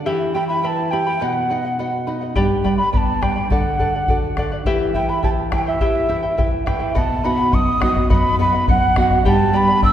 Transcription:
0.06 nylon-string guitar E3, charango E4 G4 E5 G5 B5
0.35 charango E4 E5 G5 B5, nylon-string guitar G4, quena G5
0.48 charango E4 E5 B5, quena B5
0.62 charango E4 E5 G5 B5, nylon-string guitar B4, quena A5 B5
0.91 charango E4 E5 G5 B5, nylon-string guitar G4, quena G5
1.07 charango E4 E5 B5
1.20 nylon-string guitar B2, charango B4 D#5 F#5, quena G5
1.25 quena F#5
1.50 nylon-string guitar D#4, charango B4 D#5 F#5
1.65 charango D#5 F#5
1.79 nylon-string guitar F#4, charango B4 D#5 F#5
2.07 nylon-string guitar D#4, charango B4 D#5 F#5
2.21 charango D#5 F#5
2.36 nylon-string guitar G2, charango G4 B4 D5 G5 B5, bombo low
2.64 nylon-string guitar G3, charango B4 D5 G5 B5, quena G5, bombo low
2.78 charango B4 D5 B5, quena B5
2.92 nylon-string guitar B3, charango B4 D5 G5 B5, quena B5, bombo low
2.97 quena A5
3.22 nylon-string guitar G3, charango B4 D5 G5 B5, quena G5, bombo rim, bombo low
3.36 charango B4 D5 B5
3.50 nylon-string guitar D3, charango A4 D5 F#5, quena F#5, bombo low
3.79 nylon-string guitar D4, charango A4 D5 F#5, bombo low
3.95 charango D5 F#5
4.08 nylon-string guitar F#4, charango A4 D5 F#5, bombo low
4.37 nylon-string guitar D4, charango A4 D5 F#5, bombo rim, bombo low
4.52 charango D5 F#5
4.65 nylon-string guitar E3, charango E4 G4 B4 E5 G5, bombo low
4.94 charango E4 B4 E5 G5, nylon-string guitar E4, quena G5, bombo low
5.09 charango E4 B4 G5, quena B5
5.23 charango E4 B4 E5 G5, nylon-string guitar G4, quena A5, bombo low
5.52 charango E4 B4 E5 G5, nylon-string guitar E4, quena G5, bombo rim, bombo low
5.67 charango E4 B4 G5, quena E5
5.80 nylon-string guitar E3, charango E4 G4 B4 E5 G5, bombo low
6.09 charango E4 B4 E5 G5, nylon-string guitar E4
6.23 charango E4 B4 G5
6.37 charango E4 B4 E5 G5, nylon-string guitar G4, bombo low
6.66 charango E4 B4 E5 G5, nylon-string guitar E4, quena G5, bombo rim, bombo low
6.80 charango E4 B4 G5
6.95 nylon-string guitar B2, charango B4 D#5 F#5, quena A5, bombo low
7.24 nylon-string guitar B3 D#4 F#4, charango B4 D#5 F#5, quena B5
7.38 charango D#5 F#5
7.52 nylon-string guitar F#2, charango B4 D#5 F#5, quena D#6, bombo low
7.80 nylon-string guitar B3 D#4 F#4, charango B4 D#5 F#5, quena D#6, bombo rim, bombo low
7.95 charango D#5 F#5, bombo low
8.10 nylon-string guitar F#2, charango B4 D#5 F#5, quena B5, bombo low
8.39 nylon-string guitar B3 D#4 F#4, charango B4 D#5 F#5, quena B5
8.53 charango D#5 F#5
8.68 nylon-string guitar F#2, charango B4 D#5 F#5, quena F#5, bombo low
8.96 nylon-string guitar B3 D#4 F#4, charango B4 D#5 F#5, quena F#5, bombo rim, bombo low
9.10 charango D#5 F#5, bombo low
9.25 nylon-string guitar G2, charango G4 B4 D5 G5 B5, quena A5, bombo low
9.53 nylon-string guitar B3 D4 G4, charango B4 D5 G5 B5, quena B5
9.68 charango B4 D5 B5
9.82 nylon-string guitar D3, charango B4 D5 G5 B5, quena E6, bombo low

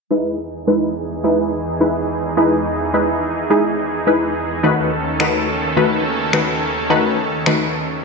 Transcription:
0.10 supersaw synth E2 E3 D#4 G#4, synth stab G#3 D#4 E4 B4
0.67 synth stab G#3 D#4 E4 B4
1.24 synth stab G#3 D#4 E4 B4
1.80 synth stab G#3 D#4 E4 B4
2.37 synth stab G#3 D#4 E4 B4
2.93 synth stab G#3 D#4 E4 B4
3.50 synth stab G#3 D#4 E4 G#4
4.07 synth stab G#3 D#4 E4 B4
4.63 supersaw synth D#2 D#3 C#4 A4, synth stab D#3 A3 D#4 F#4 B4
5.20 synth stab D#3 A3 D#4 F#4 B4, finger snap
5.77 synth stab D#3 A3 D#4 F#4 B4
6.33 synth stab D#3 A3 D#4 F#4 B4, finger snap
6.90 synth stab D#3 A3 D#4 F#4 B4
7.46 synth stab D#3 A3 D#4 F#4 B4, finger snap

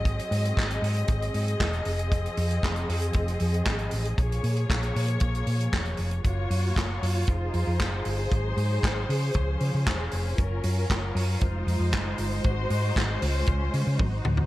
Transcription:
Already playing: fingered electric bass G#1, string section F#3 C4 G#4 D#5
0.05 kick, closed hi-hat
0.19 closed hi-hat
0.31 fingered electric bass G#2, open hi-hat
0.45 closed hi-hat
0.57 fingered electric bass G#1, kick, snare, clap
0.70 closed hi-hat
0.82 fingered electric bass G#2, open hi-hat
0.96 closed hi-hat
1.08 fingered electric bass G#1, kick, closed hi-hat
1.22 closed hi-hat
1.34 fingered electric bass G#2, open hi-hat
1.48 closed hi-hat
1.60 fingered electric bass E1, kick, snare, clap
1.73 closed hi-hat
1.85 fingered electric bass F1, string section F3 C4, open hi-hat
1.99 closed hi-hat
2.12 kick, closed hi-hat
2.26 closed hi-hat
2.37 fingered electric bass F2, open hi-hat
2.51 closed hi-hat
2.63 fingered electric bass F1, kick, snare, clap
2.76 closed hi-hat
2.89 fingered electric bass F2, open hi-hat
3.02 closed hi-hat
3.13 fingered electric bass F1, kick, closed hi-hat
3.28 closed hi-hat
3.40 fingered electric bass F2, open hi-hat
3.54 closed hi-hat
3.66 fingered electric bass G#1, kick, snare, clap
3.79 closed hi-hat
3.91 fingered electric bass A1, open hi-hat
4.05 closed hi-hat
4.17 fingered electric bass A#1, string section F3 A#3 C#5, kick, closed hi-hat
4.32 closed hi-hat
4.43 fingered electric bass A#2, open hi-hat
4.57 closed hi-hat
4.70 fingered electric bass A#1, kick, snare, clap
4.83 closed hi-hat
4.96 fingered electric bass A#2, open hi-hat
5.08 closed hi-hat
5.20 fingered electric bass A#1, kick, closed hi-hat
5.35 closed hi-hat
5.47 fingered electric bass A#2, open hi-hat
5.60 closed hi-hat
5.73 fingered electric bass E1, kick, snare, clap
5.85 closed hi-hat
5.97 fingered electric bass F1, open hi-hat
6.11 closed hi-hat
6.24 fingered electric bass F#1, string section A#3 F4 F#4 C#5, kick, closed hi-hat
6.50 fingered electric bass F#2, open hi-hat
6.76 fingered electric bass F#1, kick, snare, clap, closed hi-hat
7.03 fingered electric bass F#2, open hi-hat
7.27 fingered electric bass F1, string section D#4 G#4 C5, kick, closed hi-hat
7.54 fingered electric bass F2, open hi-hat
7.67 fingered electric bass F2
7.80 fingered electric bass F#1, kick, snare, clap, closed hi-hat
8.05 fingered electric bass G1, open hi-hat
8.31 fingered electric bass G#1, string section F#3 D#4, kick, closed hi-hat
8.57 fingered electric bass G#2, open hi-hat
8.83 fingered electric bass G#1, kick, snare, clap, closed hi-hat
9.08 fingered electric bass C#3, string section F3 C#4, open hi-hat
9.34 fingered electric bass C#2, kick, closed hi-hat
9.60 fingered electric bass C#3, open hi-hat
9.74 fingered electric bass C#3
9.87 fingered electric bass E1, kick, snare, clap
10.11 fingered electric bass F1, open hi-hat
10.38 fingered electric bass F#1, string section F#3 F4 A#4, kick, closed hi-hat
10.63 fingered electric bass F#2, open hi-hat
10.90 fingered electric bass F#1, kick, snare, clap, closed hi-hat
11.15 fingered electric bass F#2, open hi-hat
11.41 fingered electric bass F1, string section G#3 D#4 C5, kick, closed hi-hat
11.67 fingered electric bass F2, open hi-hat
11.80 fingered electric bass F2
11.93 fingered electric bass F#1, kick, snare, clap, closed hi-hat
12.18 fingered electric bass G1, open hi-hat
12.44 fingered electric bass G#1, string section D#4 F#4, kick, closed hi-hat
12.70 fingered electric bass G#2, open hi-hat
12.96 fingered electric bass G#1, kick, snare, clap, closed hi-hat
13.22 fingered electric bass C#2, string section C#4 F4, open hi-hat
13.46 fingered electric bass C#2, kick, closed hi-hat
13.74 fingered electric bass C#3, open hi-hat
13.87 fingered electric bass C#3
13.99 fingered electric bass G#1, string section D#4 F#4, kick, high tom
14.25 fingered electric bass D2, mid tom
14.37 floor tom

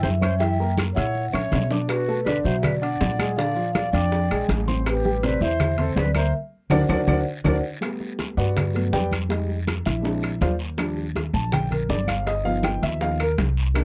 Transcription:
Already playing: grand piano E4 E5 E6
0.02 upright bass F#2, flute C5, vibraphone E5, high bongo, low bongo, high conga, short guiro
0.20 grand piano C#4 C#5 C#6, flute C5, vibraphone E5, high bongo, high conga, high timbale, short guiro, claves
0.39 grand piano E3 E4 E5, flute E5, vibraphone G5, high bongo, high conga, high timbale, long guiro
0.59 grand piano A#3 A#4 A#5, high bongo, high conga
0.78 high bongo, high conga, high timbale, short guiro, claves
0.93 upright bass A#2, grand piano E4 E5 E6, flute C#5, vibraphone F#5, high bongo, short guiro
0.98 high timbale
1.15 high conga, long guiro
1.31 upright bass A#2, grand piano C#4 C#5 C#6, flute C#5, vibraphone E5, low bongo, high conga, high timbale, claves
1.52 upright bass B2, low bongo, high conga, high timbale, low timbale, short guiro
1.71 grand piano D4 D5 D6, low bongo, short guiro
1.87 flute F#4, vibraphone B4, high bongo, high conga, high timbale, long guiro, claves
2.08 grand piano A3 A4 A5, high bongo, high conga
2.24 grand piano D3 D4, flute B4, vibraphone D5, high bongo, high conga, high timbale, short guiro
2.28 grand piano D5
2.43 upright bass B2, grand piano F#3 F#4 F#5, flute C5, vibraphone E5, high bongo, high conga, short guiro
2.61 flute B4, vibraphone D5, high bongo, high conga, low conga, high timbale, long guiro, claves
2.79 grand piano D4 D5 D6, flute D5, vibraphone F#5, high conga, high timbale
3.01 upright bass A#2, high bongo, low bongo, high conga, low timbale, short guiro
3.19 grand piano G#3 G#4 G#5, high bongo, high conga, high timbale, short guiro, claves
3.36 grand piano D3 D4 D5, flute D5, vibraphone F5, high bongo, high conga, high timbale, long guiro
3.55 grand piano F3 F4 F5, high bongo, high conga
3.73 flute D5, vibraphone F5, high bongo, high conga, high timbale, short guiro, claves
3.92 upright bass F2, grand piano D4 D5 D6, flute D5, vibraphone G5, high bongo, high timbale, short guiro
4.12 high bongo, high conga, long guiro
4.30 upright bass A#1, grand piano G#3 G#4 G#5, high bongo, high conga, high timbale, claves
4.49 upright bass A1, high bongo, low bongo, high conga, high timbale, short guiro
4.68 grand piano C4 C5 C6, high conga, short guiro
4.86 flute G4, vibraphone B4, high bongo, high conga, high timbale, long guiro, claves
5.05 grand piano G3 G4 G5, high bongo, high conga
5.23 grand piano C3 C4 C5, flute B4, vibraphone D5, high bongo, high conga, high timbale, short guiro
5.41 upright bass E2, grand piano E3 E4 E5, flute C5, vibraphone E5, high bongo, high conga, short guiro
5.60 high bongo, high conga, low conga, high timbale, long guiro, claves
5.78 grand piano C4 C5 C6, flute A4, vibraphone C5, high conga, low conga, high timbale
5.96 upright bass D2, flute B4, vibraphone D5, high bongo, low bongo, high conga, low timbale, short guiro
6.15 grand piano A#3 A#4 A#5, flute C5, vibraphone E5, high bongo, high conga, high timbale, short guiro, claves
6.70 upright bass D2, grand piano D4 F#4 A#4, vibraphone C5 D5 F#5, flute D5, low bongo, low conga, high timbale, long guiro, claves
6.88 upright bass D2, grand piano D4 F#4 A#4, vibraphone C5 D5 F#5, flute D5, low bongo, low conga, high timbale, long guiro, claves
7.07 upright bass D2, grand piano D4 F#4 A#4, vibraphone C5 D5 F#5, flute D5, low bongo, low conga, high timbale, long guiro, claves
7.44 upright bass D2, grand piano D4 F#4 A#4, vibraphone C5 D5 F#5, flute D5, low bongo, low conga, high timbale, long guiro, claves
7.81 grand piano G3 A3 B3, high bongo, high conga, high timbale, claves
8.00 high bongo, high conga
8.19 high bongo, high conga, high timbale, short guiro
8.37 upright bass G2, grand piano F#4 B4 D5 F#5, high bongo, high conga, short guiro
8.57 high bongo, high conga, low conga, high timbale, long guiro, claves
8.74 grand piano F#3 A3 B3, high timbale
8.93 upright bass F2, grand piano G4 B4 D5 G5, high bongo, low bongo, high conga, short guiro
9.11 high bongo, high conga, high timbale, short guiro, claves
9.29 grand piano G3 G#3 D#4, high bongo, high timbale, long guiro
9.48 high bongo, high conga
9.67 high bongo, high conga, high timbale, short guiro, claves
9.86 upright bass A#1, grand piano E4 E5, high bongo, high timbale, short guiro
10.02 grand piano G#3 C4 D4, high bongo, high conga, long guiro
10.23 high bongo, high conga, high timbale, claves
10.41 upright bass D#2, grand piano F4 C5 D5 F5, high bongo, low bongo, high conga, high timbale, short guiro
10.59 short guiro
10.77 grand piano F3 G3 D4, high bongo, high conga, high timbale, long guiro, claves
10.97 high bongo, high conga
11.15 high bongo, high conga, high timbale, short guiro
11.33 upright bass A#1, grand piano A5, high bongo, short guiro
11.52 grand piano G5, high bongo, high conga, low conga, high timbale, long guiro, claves
11.71 grand piano A#4, high conga, low conga, high timbale
11.89 upright bass G1, grand piano D5, high bongo, low bongo, high conga, short guiro
12.07 grand piano F5, high bongo, high conga, high timbale, short guiro, claves
12.27 grand piano D#5, high bongo, high conga, high timbale, long guiro
12.44 grand piano F3 B3 D#4 F5, high bongo, high conga
12.63 grand piano G5, high bongo, high conga, high timbale, short guiro, claves
12.83 upright bass D#2, grand piano E5, high bongo, high timbale, short guiro
13.01 grand piano F3 B3 D#4 F5, high bongo, high conga, long guiro
13.20 grand piano A#4, high bongo, high conga, high timbale, claves
13.38 upright bass C2, high bongo, low bongo, high conga, high timbale, short guiro
13.57 short guiro
13.74 grand piano D#3 A#3 D4, high bongo, high conga, high timbale, long guiro, claves

